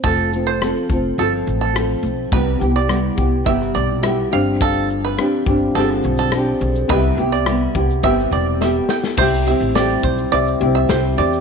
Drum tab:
CC |----------------|----------------|----------------|----------------|
SH |x-x-x-x-x-x-x-x-|x-x-x-x-x-x-x-x-|x-x-x-x-x-xxx-xx|x-xxx-xxx-x-----|
SD |----r-------r---|----r----r--r---|----r----r--r---|----r----r--o-oo|
BD |o-----o---------|o-----o-o-------|o-----o---------|o-----o-o-------|

CC |x---------------|
SH |-xxxxxxxxx-xxx-x|
SD |----o-------o---|
BD |o-----o---------|